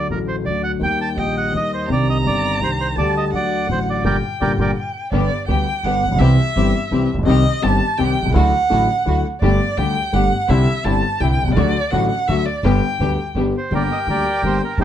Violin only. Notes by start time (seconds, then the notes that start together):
0.82 G5
1.18 D#5
1.89 A#5
2.96 A5
3.33 F#5
4.04 G5
4.76 G5
5.13 D5
5.48 G5
5.84 F#5
6.19 E5
7.27 D#5
7.62 A5
7.98 G5
8.35 F#5
9.42 D5
9.77 G5
10.14 F#5
10.41 F#5
10.50 E5
10.84 A5
11.20 G5
11.54 D5
11.91 F#5
12.10 F#5
12.28 E5
12.45 D5
12.64 G5
13.72 G5
14.78 A5